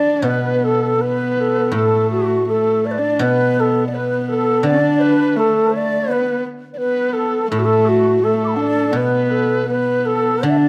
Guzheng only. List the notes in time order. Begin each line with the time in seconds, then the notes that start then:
Already playing: D3 A3 D4 E4 A4
0.22 B2
1.72 A2
3.19 B2
4.63 D3
7.52 A2
8.93 B2
10.43 D3